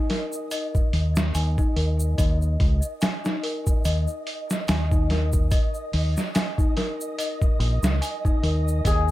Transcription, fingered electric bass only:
0.93 D#2
1.35 D#2
1.76 D#2
2.18 D#2
2.60 C#2
3.85 D#2
4.69 D#2
5.94 D#2
7.59 A#1
7.83 C#2
8.43 D#2
8.85 D#2

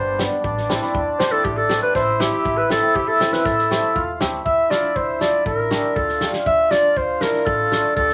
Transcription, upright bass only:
Already playing: G1
0.44 A1
0.94 E2
1.07 E2
1.45 A1
1.95 A1
2.45 A1
2.95 E2
3.08 E2
3.46 A1
3.96 E2
4.21 D2
4.46 D2
4.96 D2
5.45 A1
5.96 D2
6.46 D2
6.96 D2
7.46 A1
7.97 D2

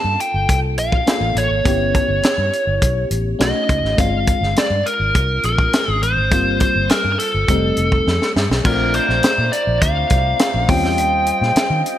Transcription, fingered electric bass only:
0.04 G2
0.34 G1
0.49 C2
0.78 A#1
1.21 A1
1.35 A1
1.49 G#1
1.66 G1
2.08 G1
2.38 G2
2.67 G1
2.82 B1
3.11 A1
3.40 B1
3.69 C#2
3.83 G#1
3.98 G1
4.41 G1
4.55 muted fingered electric bass stroke
4.70 G2
5.00 G#1
5.15 C2
5.44 A#1
5.88 G#1
6.02 A1
6.17 G#1
6.32 G1
6.76 G1
7.05 G2
7.34 G1
7.49 F1
7.77 F1
8.07 F2
8.36 G2
8.50 B1
8.65 A#1
9.09 A#1
9.38 A#2
9.67 A#1
9.81 D2
10.11 C2
10.54 A#1
10.69 D#2
10.83 E2
10.98 D#2
11.41 A#2
11.56 muted fingered electric bass stroke
11.70 D#3

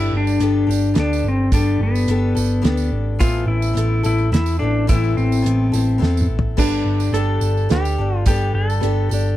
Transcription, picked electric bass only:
0.12 G1
0.40 G1
0.68 G1
0.97 D2
1.23 G1
1.53 G1
1.79 G1
2.08 G1
2.36 G1
2.64 D2
2.92 G#1
3.21 A1
3.47 A1
3.76 A1
4.05 A1
4.32 E2
4.61 A1
4.90 A1
5.17 A1
5.46 A1
5.73 A1
6.01 E2
6.29 A1
6.58 G1
6.85 G1
7.12 G1
7.41 G1
7.70 D2
7.99 G1
8.27 G1
8.54 G1
8.82 G1
9.11 G1

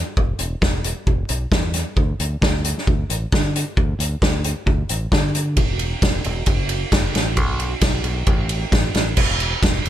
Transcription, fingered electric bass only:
0.17 E1
0.39 E1
0.61 E1
1.07 E1
1.30 B1
1.51 E2
1.96 D2
2.20 D2
2.41 D2
2.87 D2
3.10 A1
3.32 D3
3.77 D2
3.99 D2
4.22 D2
4.66 D2
4.90 A1
5.12 D3
5.57 E1
6.02 E1
6.25 E1
6.47 F#1
6.92 F#1
7.14 A1
7.37 B1
7.81 B1
8.04 B1
8.27 A1
8.72 A1
8.94 A1
9.17 E1
9.62 E1
9.85 E1

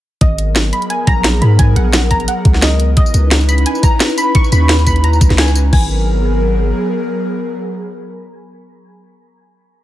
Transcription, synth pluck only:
0.21 D#5
0.73 B5
0.90 G#5
1.07 A#5
1.42 B5
1.59 G#5
1.76 F#5
2.11 A#5
2.28 F#5
2.63 D#5
2.97 D#5
3.49 B5
3.66 G#5
3.83 A#5
4.18 B5
4.35 C#6
4.52 B5
4.87 B5
5.04 A#5
5.39 G#5
5.73 G#5

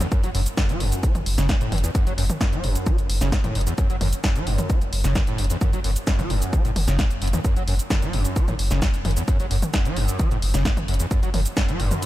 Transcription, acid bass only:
0.00 E2
0.12 F#2
0.23 F#3
0.34 F#2
0.57 F#2
0.69 F#3
0.80 F#2
1.03 F#3
1.38 C#3
1.49 F#2
1.61 A2
1.72 F#2
1.84 E2
1.95 F#2
2.07 F#3
2.18 F#2
2.41 F#2
2.52 F#3
2.64 F#2
2.86 F#3
3.21 C#3
3.32 F#2
3.44 A2
3.55 F#2
3.67 E2
3.78 F#2
3.90 F#3
4.01 F#2
4.24 F#2
4.36 F#3
4.47 F#2
4.70 F#3
5.04 C#3
5.16 F#2
5.27 A2
5.39 F#2
5.50 E2
5.62 F#2
5.73 F#3
5.84 F#2
6.07 F#2
6.19 F#3
6.30 F#2
6.53 F#3
6.65 A2
6.88 C#3
6.99 F#2
7.22 F#2
7.33 E2
7.45 F#2
7.56 F#3
7.68 F#2
7.91 F#2
8.02 F#3
8.13 F#2
8.36 F#3
8.48 A2
8.71 C#3
8.82 F#2
9.05 F#2
9.17 E2
9.28 F#2
9.40 F#3
9.51 F#2
9.74 F#2
9.85 F#3
9.97 F#2
10.20 F#3
10.31 A2
10.54 C#3
10.65 F#2
10.88 F#2
11.00 E2
11.11 F#2
11.23 F#3
11.34 F#2
11.57 F#2
11.68 F#3
11.80 F#2
12.03 F#3

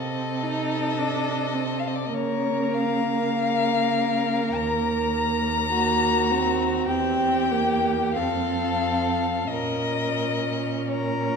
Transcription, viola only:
Already playing: C4
0.43 D#4
0.98 D4
1.55 C4
2.13 A#3
5.74 A#3
6.31 C4
6.90 C4
7.51 A#3
8.16 C4
9.50 C#4

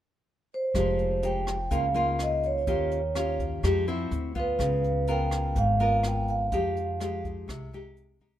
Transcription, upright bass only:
0.74 F1
1.71 C#2
2.67 D#2
3.63 F2
4.11 D2
4.59 C#2
5.56 G#1
6.52 F2
7.48 C2

